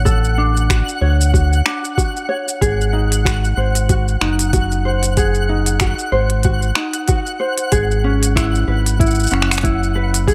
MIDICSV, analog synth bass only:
0, 0, Header, 1, 2, 480
1, 0, Start_track
1, 0, Tempo, 638298
1, 47, Time_signature, 4, 2, 24, 8
1, 7779, End_track
2, 0, Start_track
2, 0, Title_t, "Analog synth bass"
2, 0, Program_c, 0, 38
2, 0, Note_on_c, 0, 33, 75
2, 622, Note_off_c, 0, 33, 0
2, 764, Note_on_c, 0, 38, 87
2, 1217, Note_off_c, 0, 38, 0
2, 1967, Note_on_c, 0, 32, 99
2, 2659, Note_off_c, 0, 32, 0
2, 2684, Note_on_c, 0, 32, 94
2, 3138, Note_off_c, 0, 32, 0
2, 3168, Note_on_c, 0, 30, 77
2, 4466, Note_off_c, 0, 30, 0
2, 4603, Note_on_c, 0, 32, 85
2, 5057, Note_off_c, 0, 32, 0
2, 5808, Note_on_c, 0, 32, 106
2, 6499, Note_off_c, 0, 32, 0
2, 6524, Note_on_c, 0, 32, 91
2, 6978, Note_off_c, 0, 32, 0
2, 7006, Note_on_c, 0, 30, 77
2, 7779, Note_off_c, 0, 30, 0
2, 7779, End_track
0, 0, End_of_file